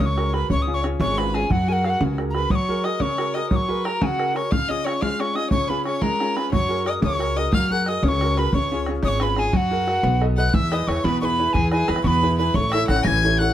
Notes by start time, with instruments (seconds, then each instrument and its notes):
Already playing: grand piano F#4 G#4 A#4
0.00 upright bass C#2, grand piano C#3, fiddle C#5, tin whistle D#6
0.06 tin whistle C#6
0.17 grand piano F#4 G#4 A#4, bodhran
0.29 grand piano F#4, fiddle C#5
0.33 grand piano G#4 A#4, fiddle B4, tin whistle B5, bodhran
0.50 upright bass C#2, grand piano C#3, fiddle C#5, tin whistle C#6, bodhran
0.62 tin whistle D#6
0.68 grand piano C#4 F4 G#4, bodhran
0.74 fiddle C#5, tin whistle C#6
0.84 grand piano C#4 F4 G#4, bodhran
1.00 upright bass G#1, grand piano G#3, fiddle C#5, tin whistle C#6, bodhran
1.18 grand piano C#4 F4 G#4, fiddle B4, tin whistle B5, bodhran
1.34 grand piano C#4 F4 G#4, fiddle G#4, tin whistle G#5, bodhran
1.50 upright bass F#2, grand piano F#3, fiddle F#4, tin whistle F#5, bodhran
1.68 grand piano F#4 G#4 A#4, tin whistle G#5, bodhran
1.73 tin whistle F#5
1.84 grand piano F#4 G#4 A#4, tin whistle F5, bodhran
1.90 tin whistle F#5
2.01 upright bass C#2, grand piano C#3, bodhran
2.18 grand piano F#4 G#4 A#4, bodhran
2.30 tin whistle A#5 B5
2.35 grand piano F#4 G#4 A#4, fiddle B4, bodhran
2.50 grand piano F#3, fiddle C#5, tin whistle D#6, bodhran
2.55 tin whistle C#6
2.68 grand piano F#4 G#4 A#4, bodhran
2.84 grand piano F#4 G#4 A#4, fiddle D#5, tin whistle D#6, bodhran
3.00 grand piano C#3, fiddle C#5, tin whistle C#6, bodhran
3.18 grand piano F#4 G#4 A#4, bodhran
3.34 grand piano F#4 G#4 A#4, fiddle D#5, tin whistle D#6, bodhran
3.50 grand piano F#3, fiddle C#5, tin whistle D#6, bodhran
3.56 tin whistle C#6
3.68 grand piano F#4 G#4 A#4, fiddle B4, bodhran
3.85 grand piano F#4 G#4 A#4, fiddle A#4, tin whistle A#5, bodhran
4.01 grand piano C#3, fiddle F#4, tin whistle G#5, bodhran
4.06 tin whistle F#5
4.18 grand piano F#4 G#4 A#4, bodhran
4.34 grand piano F#4 G#4 A#4, fiddle C#5, tin whistle C#6, bodhran
4.51 grand piano C#3, fiddle F5, tin whistle F6, bodhran
4.68 grand piano C#4 F4 G#4, fiddle D#5, tin whistle D#6, bodhran
4.85 grand piano C#4 F4 G#4, fiddle C#5, tin whistle C#6, bodhran
5.01 grand piano G#3, fiddle F5, tin whistle F6, bodhran
5.19 grand piano C#4 F4 G#4, fiddle C#5, tin whistle C#6, bodhran
5.35 grand piano C#4 F4 G#4, fiddle D#5, tin whistle D#6, bodhran
5.50 grand piano C#3, fiddle C#5, tin whistle C#6, bodhran
5.68 grand piano C#4 F4 G#4, fiddle B4, tin whistle B5, bodhran
5.85 grand piano C#4 F4 G#4, fiddle C#5, tin whistle C#6, bodhran
6.02 grand piano G#3, fiddle A#4, tin whistle A#5, bodhran
6.20 grand piano C#4 F4 G#4, bodhran
6.36 grand piano C#4 F4 G#4, fiddle B4, tin whistle B5, bodhran
6.52 upright bass F#2, grand piano F#3, fiddle C#5, tin whistle C#6, bodhran
6.69 grand piano F#4 G#4 A#4
6.85 grand piano F#4 G#4 A#4, fiddle D#5, tin whistle D#6, bodhran
7.02 upright bass C#2, grand piano C#3, fiddle C#5, tin whistle C#6, bodhran
7.19 grand piano F#4 G#4 A#4, bodhran
7.36 grand piano F#4 G#4 A#4, fiddle D#5, tin whistle D#6, bodhran
7.52 upright bass F#2, grand piano F#3, fiddle F5, tin whistle F6, bodhran
7.70 grand piano F#4 G#4 A#4, fiddle F#5, tin whistle F#6, bodhran
7.86 grand piano F#4 G#4 A#4, fiddle D#5, tin whistle D#6, bodhran
8.03 upright bass C#2, grand piano C#3, fiddle C#5, tin whistle D#6, bodhran
8.08 tin whistle C#6
8.21 grand piano F#4 G#4 A#4, bodhran
8.37 grand piano F#4 G#4 A#4, fiddle B4, tin whistle B5, bodhran
8.53 upright bass C#2, grand piano C#3, fiddle C#5, tin whistle C#6, bodhran
8.71 grand piano C#4 F4 G#4, bodhran
8.86 grand piano C#4 F4 G#4, bodhran
9.03 upright bass G#1, grand piano G#3, fiddle C#5, tin whistle D#6, bodhran
9.08 tin whistle C#6
9.20 grand piano C#4 F4 G#4, fiddle B4, tin whistle B5, bodhran
9.36 grand piano C#4 F4 G#4, fiddle G#4, tin whistle G#5, bodhran
9.53 upright bass F#2, grand piano F#3, fiddle F#4, tin whistle F#5, bodhran
9.71 grand piano F#4 G#4 A#4, bodhran
9.87 grand piano F#4 G#4 A#4, bodhran
10.03 upright bass B1, grand piano B3, bodhran
10.21 grand piano A4 B4 D#5, bodhran
10.37 grand piano A4 B4 D#5, fiddle F#5, tin whistle F#6
10.50 upright bass E2, grand piano E3, fiddle F#5, tin whistle E6, bodhran
10.55 fiddle E5
10.72 grand piano E4 G#4 B4, fiddle D#5, tin whistle D#6, bodhran
10.87 upright bass E2, grand piano E4 G#4 B4, fiddle C#5, tin whistle C#6, bodhran
10.97 bodhran
11.04 upright bass E2, grand piano B2, fiddle B4, tin whistle B5, bodhran
11.21 grand piano E4 G#4 B4, fiddle B4, tin whistle C#6, bodhran
11.25 tin whistle B5
11.39 grand piano E4 G#4 B4
11.53 upright bass E2, grand piano E3, fiddle G#4, tin whistle G#5, bodhran
11.71 grand piano E4 G#4 B4, fiddle G#4, tin whistle G#5, bodhran
11.88 upright bass E2, grand piano E4 G#4 B4, fiddle B4, tin whistle B5, bodhran
11.96 bodhran
12.04 upright bass E2, grand piano B2, fiddle B4, tin whistle B5 C#6, bodhran
12.23 grand piano E4 G#4 B4, bodhran
12.38 grand piano E4 G#4 B4, fiddle B4, tin whistle B5
12.54 upright bass A1, grand piano A3, fiddle C#5, tin whistle C#6, bodhran
12.71 grand piano E4 A4 C#5, fiddle E5, tin whistle E6, bodhran
12.88 upright bass A1, grand piano E4 A4 C#5, fiddle F#5, tin whistle F#6, bodhran
12.96 bodhran
13.03 upright bass A1, grand piano E3, fiddle G#5, tin whistle A#6, bodhran
13.08 tin whistle G#6
13.22 grand piano E4 A4 C#5, bodhran
13.39 grand piano E4 A4 C#5, fiddle F#5, tin whistle F#6